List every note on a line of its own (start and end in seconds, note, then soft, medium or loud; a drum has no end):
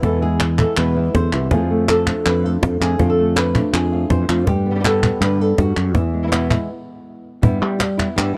0.02 0.64 E2 medium
0.02 0.21 B2 medium
0.02 1.14 E3 medium
0.02 0.21 E3 medium
0.02 0.21 G#3 medium
0.02 0.21 B3 medium
0.02 0.20 E4 medium
0.02 0.22 A4 loud
0.02 cajon bass medium
0.02 cajon slap soft
0.21 1.49 G#3 medium
0.21 0.39 G#3 soft
0.21 0.40 B3 soft
0.21 0.39 E4 soft
0.21 0.59 G#4 medium
0.40 muted nylon-string guitar stroke soft
0.40 cajon slap medium
0.40 clap medium
0.58 0.77 G#3 soft
0.58 0.77 B3 soft
0.58 0.76 E4 soft
0.58 0.77 A4 medium
0.58 cajon bass medium
0.58 clap medium
0.77 1.08 E2 medium
0.77 0.95 B2 medium
0.77 0.95 E3 medium
0.77 0.95 G#3 medium
0.77 0.95 B3 medium
0.77 0.94 E4 medium
0.77 1.14 B4 medium
0.77 clap medium
0.96 1.14 G#3 soft
0.96 1.14 B3 soft
0.96 1.13 E4 soft
0.96 1.50 E4 soft
1.14 1.29 E2 medium
1.14 1.33 D3 medium
1.14 1.51 C5 medium
1.14 muted nylon-string guitar stroke medium
1.14 cajon bass medium
1.14 cajon slap loud
1.32 1.52 C2 medium
1.32 1.52 E3 medium
1.32 1.51 G#3 soft
1.32 1.51 B3 soft
1.32 1.50 E4 soft
1.32 clap medium
1.51 2.12 F2 medium
1.51 1.87 D3 medium
1.51 2.98 F3 medium
1.51 1.88 A3 medium
1.51 1.88 C4 medium
1.51 1.88 F4 medium
1.51 1.88 G#4 medium
1.51 cajon bass medium
1.51 cajon slap soft
1.70 3.18 A3 medium
1.88 2.06 D3 soft
1.88 2.06 A3 soft
1.88 2.06 C4 soft
1.88 2.05 F4 soft
1.88 2.26 A4 medium
1.88 cajon slap medium
1.88 clap medium
2.06 2.24 A3 soft
2.06 2.24 C4 soft
2.06 3.55 D4 soft
2.06 2.24 F4 soft
2.06 cajon bass medium
2.06 cajon slap soft
2.06 clap medium
2.25 2.56 F2 medium
2.25 2.46 B4 medium
2.25 muted nylon-string guitar stroke soft
2.25 clap medium
2.44 2.81 A3 soft
2.44 2.80 C4 soft
2.44 2.79 F4 soft
2.44 2.82 A4 medium
2.62 2.77 F2 medium
2.62 cajon bass medium
2.62 cajon slap loud
2.80 2.96 F2 medium
2.80 2.98 A3 soft
2.80 2.99 C4 soft
2.80 2.98 F4 soft
2.80 3.09 G#4 medium
2.80 clap medium
2.98 3.60 F2 medium
2.98 3.35 D3 medium
2.98 4.10 F3 medium
2.98 3.36 A3 medium
2.98 3.36 C4 medium
2.98 3.36 F4 medium
2.98 cajon bass loud
2.98 cajon slap soft
3.10 3.37 A4 medium
3.19 4.46 A3 medium
3.36 3.54 A3 soft
3.36 3.53 F4 soft
3.36 3.74 B4 medium
3.36 cajon slap medium
3.36 clap medium
3.54 3.72 A3 soft
3.54 3.73 C4 soft
3.54 4.46 D4 medium
3.54 3.72 F4 soft
3.54 cajon bass medium
3.54 clap medium
3.73 4.04 F2 medium
3.73 4.11 G#4 medium
3.73 muted nylon-string guitar stroke medium
3.73 clap medium
3.92 4.29 A3 soft
3.92 4.28 C4 soft
3.92 4.27 F4 soft
3.92 4.46 F4 soft
4.10 4.25 F2 medium
4.10 4.29 E3 medium
4.10 4.48 C5 medium
4.10 cajon bass medium
4.10 cajon slap medium
4.29 4.47 F2 loud
4.29 4.48 F3 medium
4.29 4.47 A3 soft
4.29 4.47 C4 soft
4.29 4.47 F4 soft
4.29 clap medium
4.47 5.08 G2 medium
4.47 5.93 G3 medium
4.47 5.22 G4 medium
4.47 muted nylon-string guitar stroke medium
4.47 cajon bass loud
4.47 cajon slap soft
4.66 5.04 B3 medium
4.70 4.74 D3 soft
4.70 4.74 G3 soft
4.70 4.75 B3 soft
4.70 4.75 G4 soft
4.75 4.78 D3 soft
4.75 4.79 G3 soft
4.75 4.79 B3 medium
4.75 4.80 G4 medium
4.80 4.83 D3 medium
4.80 4.83 G3 medium
4.80 4.84 B3 medium
4.80 4.84 G4 medium
4.84 5.02 D3 medium
4.84 5.02 G3 medium
4.84 5.02 B3 medium
4.84 5.01 G4 medium
4.84 5.22 A4 medium
4.84 cajon slap loud
4.84 clap medium
5.02 5.20 G3 soft
5.02 5.21 B3 soft
5.02 6.50 B3 soft
5.02 5.20 G4 soft
5.02 cajon bass medium
5.02 clap medium
5.20 5.51 G2 loud
5.20 5.39 D3 medium
5.20 5.39 G3 medium
5.20 5.39 B3 medium
5.20 5.38 G4 medium
5.20 5.41 B4 medium
5.20 clap medium
5.39 5.57 G3 soft
5.39 5.58 B3 soft
5.39 5.57 G4 soft
5.39 5.96 A4 medium
5.58 5.73 G2 medium
5.58 5.96 F#4 medium
5.58 muted nylon-string guitar stroke medium
5.58 cajon bass medium
5.58 cajon slap loud
5.76 5.95 F#2 medium
5.76 clap medium
5.95 6.56 E2 medium
5.95 6.67 E3 medium
5.95 7.43 E4 medium
5.95 muted nylon-string guitar stroke medium
5.95 cajon bass loud
5.95 cajon slap soft
6.14 6.67 G#3 medium
6.23 6.26 E3 soft
6.23 6.26 G#3 soft
6.23 6.27 B3 soft
6.23 6.27 E4 soft
6.27 6.31 E3 soft
6.27 6.31 G#3 medium
6.27 6.31 B3 medium
6.27 6.31 E4 medium
6.32 6.50 B2 medium
6.32 6.50 E3 medium
6.32 6.50 G#3 medium
6.32 6.50 B3 medium
6.32 6.49 E4 medium
6.32 cajon slap medium
6.32 clap medium
6.50 6.69 G#3 soft
6.50 6.69 B3 soft
6.50 7.42 B3 soft
6.50 6.68 E4 soft
6.50 cajon bass medium
6.50 clap medium
7.42 7.58 G2 loud
7.42 7.61 G3 medium
7.42 7.61 B3 medium
7.42 7.59 E4 medium
7.42 cajon bass loud
7.61 8.07 G3 loud
7.61 7.78 B3 soft
7.61 7.79 E4 medium
7.79 muted nylon-string guitar stroke medium
7.79 cajon slap loud
7.79 clap medium
7.97 8.16 B3 soft
7.97 8.16 E4 medium
7.97 cajon bass medium
7.97 cajon slap soft
7.97 clap medium
8.16 8.33 G2 loud
8.16 8.35 G3 medium
8.16 8.35 B3 medium
8.16 8.33 E4 medium
8.16 clap medium
8.34 8.37 E4 medium